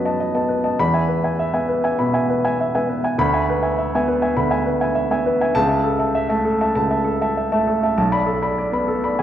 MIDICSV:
0, 0, Header, 1, 2, 480
1, 0, Start_track
1, 0, Tempo, 597015
1, 636, Time_signature, 4, 2, 24, 8
1, 4958, Tempo, 607287
1, 7375, End_track
2, 0, Start_track
2, 0, Title_t, "Grand piano"
2, 0, Program_c, 0, 0
2, 0, Control_c, 0, 64, 127
2, 0, Note_on_c, 0, 42, 62
2, 0, Note_on_c, 0, 54, 52
2, 0, Note_on_c, 0, 59, 47
2, 0, Note_on_c, 0, 71, 56
2, 0, Note_on_c, 0, 75, 47
2, 0, Note_on_c, 0, 81, 51
2, 0, Note_on_c, 0, 83, 57
2, 41, Note_off_c, 0, 75, 0
2, 41, Note_on_c, 0, 75, 52
2, 46, Note_off_c, 0, 81, 0
2, 46, Note_on_c, 0, 81, 55
2, 112, Note_off_c, 0, 71, 0
2, 147, Note_off_c, 0, 75, 0
2, 150, Note_off_c, 0, 81, 0
2, 162, Note_on_c, 0, 75, 57
2, 265, Note_off_c, 0, 75, 0
2, 277, Note_on_c, 0, 75, 50
2, 279, Note_off_c, 0, 59, 0
2, 279, Note_on_c, 0, 59, 52
2, 281, Note_on_c, 0, 81, 54
2, 385, Note_off_c, 0, 75, 0
2, 386, Note_off_c, 0, 81, 0
2, 391, Note_on_c, 0, 71, 55
2, 469, Note_off_c, 0, 59, 0
2, 515, Note_on_c, 0, 75, 51
2, 515, Note_on_c, 0, 81, 55
2, 585, Note_off_c, 0, 71, 0
2, 623, Note_off_c, 0, 75, 0
2, 623, Note_off_c, 0, 81, 0
2, 638, Note_on_c, 0, 40, 68
2, 639, Note_off_c, 0, 83, 0
2, 639, Note_on_c, 0, 83, 82
2, 651, Control_c, 0, 64, 0
2, 656, Note_off_c, 0, 54, 0
2, 657, Note_off_c, 0, 42, 0
2, 753, Note_on_c, 0, 76, 47
2, 753, Note_on_c, 0, 80, 51
2, 778, Control_c, 0, 64, 127
2, 829, Note_off_c, 0, 83, 0
2, 862, Note_off_c, 0, 76, 0
2, 862, Note_off_c, 0, 80, 0
2, 870, Note_on_c, 0, 71, 53
2, 995, Note_on_c, 0, 76, 48
2, 999, Note_on_c, 0, 80, 51
2, 1066, Note_off_c, 0, 71, 0
2, 1104, Note_off_c, 0, 76, 0
2, 1106, Note_off_c, 0, 80, 0
2, 1120, Note_on_c, 0, 76, 59
2, 1225, Note_off_c, 0, 76, 0
2, 1235, Note_on_c, 0, 59, 49
2, 1235, Note_on_c, 0, 80, 53
2, 1237, Note_on_c, 0, 76, 52
2, 1345, Note_off_c, 0, 76, 0
2, 1345, Note_off_c, 0, 80, 0
2, 1356, Note_on_c, 0, 71, 54
2, 1429, Note_off_c, 0, 59, 0
2, 1479, Note_on_c, 0, 80, 57
2, 1481, Note_on_c, 0, 76, 48
2, 1550, Note_off_c, 0, 71, 0
2, 1572, Note_off_c, 0, 40, 0
2, 1588, Note_off_c, 0, 80, 0
2, 1589, Note_off_c, 0, 76, 0
2, 1599, Note_on_c, 0, 83, 59
2, 1606, Note_on_c, 0, 47, 54
2, 1716, Note_on_c, 0, 76, 50
2, 1721, Note_on_c, 0, 80, 59
2, 1794, Note_off_c, 0, 83, 0
2, 1798, Note_off_c, 0, 47, 0
2, 1828, Note_off_c, 0, 76, 0
2, 1831, Note_off_c, 0, 80, 0
2, 1847, Note_on_c, 0, 71, 55
2, 1966, Note_on_c, 0, 80, 62
2, 1967, Note_on_c, 0, 76, 57
2, 2040, Note_off_c, 0, 71, 0
2, 2075, Note_off_c, 0, 76, 0
2, 2075, Note_off_c, 0, 80, 0
2, 2095, Note_on_c, 0, 76, 56
2, 2200, Note_off_c, 0, 76, 0
2, 2207, Note_on_c, 0, 59, 53
2, 2209, Note_on_c, 0, 80, 58
2, 2212, Note_on_c, 0, 76, 51
2, 2315, Note_off_c, 0, 80, 0
2, 2317, Note_off_c, 0, 76, 0
2, 2326, Note_on_c, 0, 71, 55
2, 2398, Note_off_c, 0, 59, 0
2, 2442, Note_on_c, 0, 76, 51
2, 2447, Note_on_c, 0, 80, 60
2, 2516, Note_off_c, 0, 71, 0
2, 2550, Note_off_c, 0, 76, 0
2, 2554, Note_off_c, 0, 80, 0
2, 2560, Note_on_c, 0, 38, 72
2, 2564, Note_on_c, 0, 83, 85
2, 2576, Control_c, 0, 64, 0
2, 2682, Note_on_c, 0, 76, 50
2, 2683, Note_on_c, 0, 80, 59
2, 2711, Control_c, 0, 64, 127
2, 2756, Note_off_c, 0, 83, 0
2, 2791, Note_off_c, 0, 76, 0
2, 2792, Note_off_c, 0, 80, 0
2, 2810, Note_on_c, 0, 71, 58
2, 2914, Note_on_c, 0, 76, 49
2, 2915, Note_on_c, 0, 80, 50
2, 3001, Note_off_c, 0, 71, 0
2, 3028, Note_off_c, 0, 76, 0
2, 3029, Note_off_c, 0, 80, 0
2, 3043, Note_on_c, 0, 76, 58
2, 3162, Note_off_c, 0, 76, 0
2, 3174, Note_on_c, 0, 59, 57
2, 3174, Note_on_c, 0, 76, 53
2, 3178, Note_on_c, 0, 80, 60
2, 3279, Note_off_c, 0, 76, 0
2, 3280, Note_on_c, 0, 71, 60
2, 3282, Note_off_c, 0, 80, 0
2, 3363, Note_off_c, 0, 59, 0
2, 3392, Note_on_c, 0, 76, 55
2, 3394, Note_on_c, 0, 80, 60
2, 3476, Note_off_c, 0, 71, 0
2, 3496, Note_off_c, 0, 38, 0
2, 3507, Note_off_c, 0, 76, 0
2, 3508, Note_off_c, 0, 80, 0
2, 3511, Note_on_c, 0, 83, 63
2, 3513, Note_on_c, 0, 38, 63
2, 3622, Note_on_c, 0, 76, 55
2, 3626, Note_on_c, 0, 80, 56
2, 3710, Note_off_c, 0, 83, 0
2, 3740, Note_off_c, 0, 76, 0
2, 3742, Note_off_c, 0, 80, 0
2, 3748, Note_on_c, 0, 71, 58
2, 3867, Note_on_c, 0, 76, 53
2, 3868, Note_on_c, 0, 80, 58
2, 3947, Note_off_c, 0, 71, 0
2, 3968, Note_off_c, 0, 76, 0
2, 3980, Note_on_c, 0, 76, 61
2, 3983, Note_off_c, 0, 80, 0
2, 4096, Note_off_c, 0, 76, 0
2, 4106, Note_on_c, 0, 59, 57
2, 4108, Note_on_c, 0, 76, 55
2, 4111, Note_on_c, 0, 80, 60
2, 4223, Note_off_c, 0, 76, 0
2, 4224, Note_off_c, 0, 80, 0
2, 4230, Note_on_c, 0, 71, 60
2, 4306, Note_off_c, 0, 59, 0
2, 4348, Note_on_c, 0, 76, 56
2, 4353, Note_on_c, 0, 80, 60
2, 4427, Note_off_c, 0, 71, 0
2, 4445, Note_off_c, 0, 38, 0
2, 4460, Note_on_c, 0, 81, 94
2, 4461, Note_off_c, 0, 76, 0
2, 4463, Note_on_c, 0, 37, 78
2, 4464, Note_off_c, 0, 80, 0
2, 4495, Control_c, 0, 64, 0
2, 4564, Note_off_c, 0, 81, 0
2, 4570, Note_on_c, 0, 76, 55
2, 4576, Note_on_c, 0, 81, 56
2, 4634, Control_c, 0, 64, 127
2, 4690, Note_off_c, 0, 76, 0
2, 4693, Note_off_c, 0, 81, 0
2, 4693, Note_on_c, 0, 69, 57
2, 4812, Note_on_c, 0, 76, 53
2, 4821, Note_on_c, 0, 81, 58
2, 4896, Note_off_c, 0, 69, 0
2, 4930, Note_off_c, 0, 76, 0
2, 4935, Note_off_c, 0, 81, 0
2, 4943, Note_on_c, 0, 76, 63
2, 5046, Note_off_c, 0, 76, 0
2, 5058, Note_on_c, 0, 76, 58
2, 5060, Note_on_c, 0, 57, 55
2, 5062, Note_on_c, 0, 81, 63
2, 5173, Note_off_c, 0, 76, 0
2, 5175, Note_off_c, 0, 81, 0
2, 5182, Note_on_c, 0, 69, 58
2, 5259, Note_off_c, 0, 57, 0
2, 5309, Note_on_c, 0, 76, 56
2, 5309, Note_on_c, 0, 81, 62
2, 5381, Note_off_c, 0, 69, 0
2, 5398, Note_off_c, 0, 37, 0
2, 5410, Note_off_c, 0, 81, 0
2, 5420, Note_off_c, 0, 76, 0
2, 5422, Note_on_c, 0, 81, 70
2, 5423, Note_on_c, 0, 37, 64
2, 5532, Note_off_c, 0, 81, 0
2, 5541, Note_on_c, 0, 76, 53
2, 5544, Note_on_c, 0, 81, 58
2, 5652, Note_on_c, 0, 69, 62
2, 5657, Note_off_c, 0, 76, 0
2, 5658, Note_off_c, 0, 81, 0
2, 5786, Note_on_c, 0, 76, 55
2, 5790, Note_on_c, 0, 81, 65
2, 5856, Note_off_c, 0, 69, 0
2, 5898, Note_off_c, 0, 76, 0
2, 5901, Note_off_c, 0, 81, 0
2, 5909, Note_on_c, 0, 76, 57
2, 6016, Note_off_c, 0, 76, 0
2, 6028, Note_on_c, 0, 76, 54
2, 6028, Note_on_c, 0, 81, 62
2, 6034, Note_on_c, 0, 57, 59
2, 6138, Note_off_c, 0, 76, 0
2, 6138, Note_off_c, 0, 81, 0
2, 6148, Note_on_c, 0, 69, 60
2, 6224, Note_off_c, 0, 57, 0
2, 6273, Note_on_c, 0, 76, 55
2, 6275, Note_on_c, 0, 81, 61
2, 6340, Note_off_c, 0, 69, 0
2, 6355, Note_off_c, 0, 37, 0
2, 6377, Note_off_c, 0, 81, 0
2, 6379, Note_off_c, 0, 76, 0
2, 6388, Note_on_c, 0, 35, 73
2, 6389, Note_on_c, 0, 81, 70
2, 6401, Control_c, 0, 64, 0
2, 6501, Note_on_c, 0, 74, 53
2, 6503, Note_on_c, 0, 83, 72
2, 6520, Control_c, 0, 64, 127
2, 6579, Note_off_c, 0, 81, 0
2, 6611, Note_off_c, 0, 74, 0
2, 6612, Note_off_c, 0, 83, 0
2, 6616, Note_on_c, 0, 69, 57
2, 6740, Note_on_c, 0, 74, 52
2, 6743, Note_on_c, 0, 83, 56
2, 6813, Note_off_c, 0, 69, 0
2, 6851, Note_off_c, 0, 74, 0
2, 6853, Note_off_c, 0, 83, 0
2, 6868, Note_on_c, 0, 74, 61
2, 6967, Note_off_c, 0, 74, 0
2, 6976, Note_on_c, 0, 59, 51
2, 6979, Note_on_c, 0, 74, 49
2, 6987, Note_on_c, 0, 83, 57
2, 7094, Note_off_c, 0, 74, 0
2, 7098, Note_off_c, 0, 83, 0
2, 7103, Note_on_c, 0, 69, 59
2, 7179, Note_off_c, 0, 59, 0
2, 7227, Note_on_c, 0, 74, 49
2, 7230, Note_on_c, 0, 83, 54
2, 7304, Note_off_c, 0, 69, 0
2, 7327, Note_off_c, 0, 35, 0
2, 7341, Note_off_c, 0, 74, 0
2, 7342, Note_off_c, 0, 83, 0
2, 7347, Note_on_c, 0, 80, 61
2, 7350, Note_on_c, 0, 40, 66
2, 7374, Control_c, 0, 64, 0
2, 7375, Note_off_c, 0, 40, 0
2, 7375, Note_off_c, 0, 80, 0
2, 7375, End_track
0, 0, End_of_file